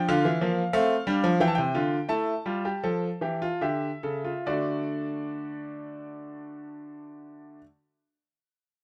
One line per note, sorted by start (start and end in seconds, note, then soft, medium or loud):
0.09 0.24 D3 loud
0.09 0.29 F4 loud
0.09 0.71 F5 medium
0.25 0.41 E3 loud
0.41 0.61 F3 medium
0.41 0.62 A#3 medium
0.73 0.94 A3 loud
0.73 0.94 C4 medium
0.73 1.38 F5 loud
1.07 1.23 G3 loud
1.07 1.28 D4 medium
1.24 1.40 F3 loud
1.40 1.57 E3 loud
1.40 1.62 E4 medium
1.40 1.48 G5 medium
1.48 1.55 A5 medium
1.55 1.75 C3 medium
1.55 2.08 G5 medium
1.75 1.97 D3 medium
1.75 1.97 F4 medium
2.09 2.32 A3 medium
2.09 2.32 E4 medium
2.09 3.58 A5 medium
2.46 2.69 G3 medium
2.46 2.64 F4 medium
2.65 2.84 G4 medium
2.84 3.08 F3 medium
2.84 3.08 A4 medium
3.21 3.47 E3 medium
3.21 3.42 G4 medium
3.42 3.62 F4 medium
3.61 3.88 D3 medium
3.61 3.88 G4 medium
3.61 4.45 E5 medium
4.03 4.31 C#3 medium
4.03 4.25 A4 medium
4.25 4.47 F4 medium
4.46 7.58 D3 medium
4.46 7.61 A3 medium
4.46 7.61 D4 medium
4.46 7.58 F#4 medium
4.46 7.58 D5 medium